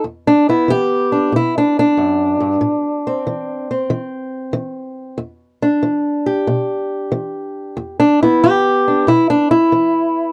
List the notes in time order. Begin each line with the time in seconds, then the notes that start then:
0.04 E2
0.27 D4
0.49 B3 E4
0.68 E3 G4
1.12 D4
1.32 B2 E4
1.58 D4
1.79 D4
1.97 F#2
2.40 G2
2.61 A2
3.07 C4
3.27 E3
3.71 C4
3.90 E3
4.53 E3
5.18 E2
5.62 D4
5.83 E3
6.26 G4
6.47 B2
7.12 E3
7.77 E2
8.00 D4
8.23 B3 E4
8.43 E3 G4
8.88 D4
9.07 B2 E4
9.30 D4
9.51 E4
9.72 E3